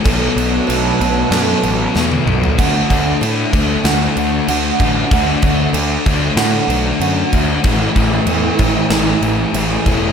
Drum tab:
CC |x-x-x-x-x-x-----|x-x-x-x-x-x-x-x-|x-x-x-x-x-x-x-x-|x-x-x-x-x-x-x-x-|
SD |--------o---o---|--------o-------|--------o-------|--------o-------|
T1 |-------------o--|----------------|----------------|----------------|
T2 |--------------o-|----------------|----------------|----------------|
FT |---------------o|----------------|----------------|----------------|
BD |o---------------|o-o---o-------o-|o-o---o-------o-|o-o---o-------o-|